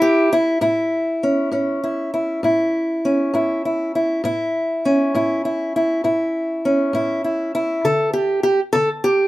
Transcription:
0.00 0.25 A2 medium
0.00 0.31 E4 loud
0.00 0.31 G4 medium
0.33 0.60 E4 medium
0.61 1.16 A2 medium
0.61 1.82 E4 medium
1.23 1.52 C#4 soft
1.52 2.06 A2 medium
1.52 3.03 C#4 soft
1.84 2.13 E4 medium
2.14 2.44 E4 soft
2.43 2.97 A2 medium
2.43 3.33 E4 soft
3.05 4.21 C#4 soft
3.34 3.88 A2 medium
3.34 3.64 E4 soft
3.65 3.94 E4 soft
3.95 4.24 E4 soft
4.24 4.78 A2 medium
4.24 5.14 E4 medium
4.85 6.64 C#4 medium
5.15 5.68 A2 medium
5.15 5.44 E4 medium
5.45 5.75 E4 medium
5.76 6.03 E4 medium
6.04 6.58 A2 medium
6.04 6.93 E4 medium
6.65 7.82 C#4 medium
6.93 7.48 A2 medium
6.93 7.23 E4 medium
7.24 7.54 E4 medium
7.55 7.85 E4 medium
7.85 8.39 D3 medium
7.85 8.13 A4 medium
8.13 8.42 G4 medium
8.43 8.59 G4 medium
8.73 9.28 D3 medium
8.73 8.89 A4 medium
9.04 9.28 G4 medium

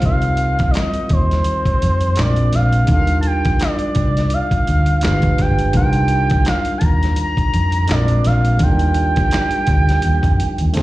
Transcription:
0.00 0.65 C2 medium
0.00 2.12 G3 medium
0.00 2.13 C4 medium
0.00 2.14 D#4 medium
0.00 kick loud
0.00 closed hi-hat medium
0.05 2.15 F4 medium
0.05 2.16 A#4 medium
0.05 0.72 F5 loud
0.22 closed hi-hat soft
0.37 closed hi-hat medium
0.59 kick medium
0.59 closed hi-hat soft
0.71 0.78 D5 medium
0.71 closed hi-hat medium
0.76 1.14 D#5 medium
0.76 snare loud
0.76 clap medium
0.94 closed hi-hat soft
1.09 1.42 D#2 medium
1.09 2.21 C5 medium
1.09 kick medium
1.09 closed hi-hat medium
1.31 snare soft
1.31 closed hi-hat soft
1.44 closed hi-hat medium
1.66 kick medium
1.66 closed hi-hat soft
1.82 2.13 F2 medium
1.82 closed hi-hat medium
2.01 closed hi-hat soft
2.16 2.49 A#1 medium
2.16 2.88 G#3 medium
2.16 2.89 C4 medium
2.16 2.86 D4 medium
2.16 2.90 F4 medium
2.16 2.90 A#4 medium
2.16 2.56 D5 medium
2.16 snare loud
2.16 clap medium
2.16 closed hi-hat medium
2.36 closed hi-hat soft
2.53 2.89 A#1 medium
2.53 2.90 F5 medium
2.53 snare soft
2.53 closed hi-hat medium
2.73 closed hi-hat soft
2.85 4.97 G3 medium
2.85 4.98 D4 medium
2.85 kick medium
2.85 closed hi-hat medium
2.89 3.51 D#2 loud
2.89 4.99 D#4 medium
2.89 5.00 F4 medium
2.89 2.98 A4 medium
2.89 3.18 F5 loud
2.99 5.04 A#4 medium
3.07 closed hi-hat soft
3.21 3.28 A5 medium
3.21 closed hi-hat medium
3.27 3.64 G5 loud
3.45 kick medium
3.45 closed hi-hat soft
3.59 4.35 D5 medium
3.59 snare medium
3.59 clap medium
3.59 closed hi-hat medium
3.79 closed hi-hat soft
3.95 4.27 C2 medium
3.95 kick medium
3.95 closed hi-hat medium
4.17 snare soft
4.17 closed hi-hat soft
4.30 5.04 F5 loud
4.30 closed hi-hat medium
4.51 kick medium
4.51 closed hi-hat soft
4.67 5.06 D2 medium
4.67 closed hi-hat medium
4.86 closed hi-hat soft
5.01 5.35 G1 medium
5.01 5.74 G#3 medium
5.01 5.72 D4 medium
5.01 5.75 F4 medium
5.01 5.75 G4 medium
5.01 5.43 F5 loud
5.01 snare loud
5.01 clap medium
5.01 closed hi-hat medium
5.06 5.76 B4 medium
5.22 kick medium
5.22 closed hi-hat soft
5.38 5.70 G1 medium
5.38 5.76 G5 loud
5.38 kick medium
5.38 snare soft
5.38 closed hi-hat medium
5.59 closed hi-hat soft
5.71 6.37 C2 loud
5.71 7.83 G3 medium
5.71 7.84 D4 medium
5.71 7.85 D#4 medium
5.71 kick loud
5.71 closed hi-hat medium
5.77 7.86 F4 medium
5.77 7.87 A#4 medium
5.77 6.50 G5 loud
5.93 closed hi-hat soft
6.08 closed hi-hat medium
6.30 kick medium
6.30 closed hi-hat soft
6.45 6.79 F5 loud
6.45 snare loud
6.45 clap medium
6.45 closed hi-hat medium
6.65 closed hi-hat medium
6.78 6.86 A5 medium
6.78 kick medium
6.78 closed hi-hat medium
6.82 7.13 D#2 medium
6.82 7.19 A#5 loud
7.03 snare soft
7.03 closed hi-hat soft
7.16 7.92 A#5 loud
7.16 closed hi-hat medium
7.37 kick medium
7.37 closed hi-hat soft
7.54 7.85 F2 medium
7.54 closed hi-hat medium
7.72 closed hi-hat medium
7.87 8.20 A#1 medium
7.87 8.60 G#3 medium
7.87 8.60 C4 medium
7.87 8.57 D4 medium
7.87 8.61 F4 medium
7.87 7.98 A4 medium
7.87 8.28 D5 loud
7.87 snare loud
7.87 clap medium
7.87 closed hi-hat medium
7.98 8.65 A#4 medium
8.08 closed hi-hat soft
8.24 8.56 A#1 medium
8.24 8.64 F5 medium
8.24 snare soft
8.24 closed hi-hat medium
8.45 closed hi-hat soft
8.57 10.69 G3 medium
8.57 10.70 D4 medium
8.57 kick loud
8.57 closed hi-hat medium
8.61 9.23 D#2 loud
8.61 10.71 D#4 medium
8.61 10.72 F4 medium
8.61 8.70 A4 medium
8.61 10.82 G5 loud
8.71 10.76 A#4 medium
8.79 closed hi-hat soft
8.94 closed hi-hat medium
9.16 kick medium
9.16 closed hi-hat soft
9.31 snare medium
9.31 clap medium
9.31 closed hi-hat medium
9.51 closed hi-hat soft
9.67 9.99 D2 medium
9.67 kick medium
9.67 closed hi-hat medium
9.89 snare soft
9.89 closed hi-hat soft
10.02 10.22 D#2 medium
10.02 closed hi-hat medium
10.23 10.37 F2 medium
10.23 kick medium
10.23 closed hi-hat soft
10.40 closed hi-hat medium
10.58 10.73 D#2 medium
10.58 closed hi-hat soft
10.73 10.82 D2 medium
10.73 10.82 A3 medium
10.73 10.82 C4 medium
10.73 10.82 D4 medium
10.73 10.82 F4 medium
10.73 10.82 G#4 medium
10.73 closed hi-hat medium
10.77 snare medium

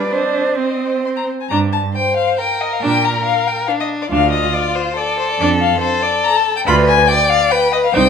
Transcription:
0.00 0.10 G3 medium
0.00 0.11 D4 medium
0.00 0.14 B4 medium
0.00 0.13 D5 soft
0.11 1.27 C4 soft
0.11 0.60 D4 medium
0.11 0.58 C5 soft
0.11 0.58 D#5 soft
0.58 1.27 C4 soft
0.58 1.28 C5 soft
0.58 1.03 D#5 soft
1.05 1.09 C6 medium
1.16 1.24 A#5 medium
1.40 1.49 G#5 medium
1.49 1.87 G2 medium
1.49 1.71 D4 medium
1.49 1.57 A#5 medium
1.73 1.81 A5 medium
1.95 2.40 C5 medium
1.95 2.16 G5 medium
2.17 2.38 F5 medium
2.38 3.70 A#4 medium
2.38 2.62 G5 medium
2.61 2.74 D#5 medium
2.73 2.82 F5 medium
2.81 3.18 A#2 medium
2.81 3.02 D4 medium
2.81 3.06 G5 medium
3.05 3.25 A#5 medium
3.26 3.49 F5 medium
3.47 3.67 G5 medium
3.67 4.11 D4 medium
3.67 3.72 F5 medium
3.80 3.88 D#5 medium
4.02 4.06 D5 medium
4.11 4.47 D2 medium
4.11 4.31 D4 medium
4.11 4.95 F4 medium
4.11 4.31 F5 medium
4.32 4.55 D#5 medium
4.54 4.77 D5 medium
4.75 4.98 C5 medium
4.97 5.80 A4 medium
4.97 5.18 D5 medium
5.19 5.29 C5 medium
5.30 5.39 D5 medium
5.39 5.74 F2 medium
5.39 5.60 D4 medium
5.39 5.48 D5 loud
5.61 5.80 F5 medium
5.81 6.66 A4 medium
5.81 6.04 C5 medium
6.03 6.26 D5 medium
6.24 6.38 A#5 loud
6.37 6.56 A5 medium
6.57 6.61 G5 medium
6.66 7.02 D2 medium
6.66 6.86 F4 medium
6.66 7.08 B4 medium
6.66 6.75 B5 loud
6.88 7.10 G#5 loud
7.08 7.53 D5 medium
7.08 7.31 G5 medium
7.30 7.52 F5 loud
7.50 7.94 B4 medium
7.50 7.72 G5 loud
7.73 7.77 D#5 medium
7.84 7.95 F5 medium
7.93 8.09 C2 medium
7.93 8.09 D#4 medium
7.93 8.09 C5 medium
7.93 8.09 G5 loud

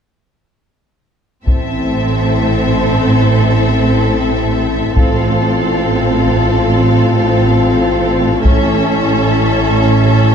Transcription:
1.45 4.92 A1 soft
1.45 4.91 A2 soft
1.45 4.92 C4 soft
1.45 4.92 E4 soft
1.45 4.92 A4 soft
1.45 4.91 E5 soft
1.45 taiko soft
4.94 8.40 A1 soft
4.94 8.40 A2 soft
4.94 8.41 C4 soft
4.94 8.41 F4 soft
4.94 8.40 A4 soft
4.94 8.43 F5 soft
4.94 taiko soft
6.27 taiko soft
8.44 10.35 A1 soft
8.44 10.35 A2 soft
8.44 10.35 C#4 soft
8.44 10.35 E4 soft
8.44 10.35 A4 soft
8.44 10.35 E5 soft
8.44 taiko soft

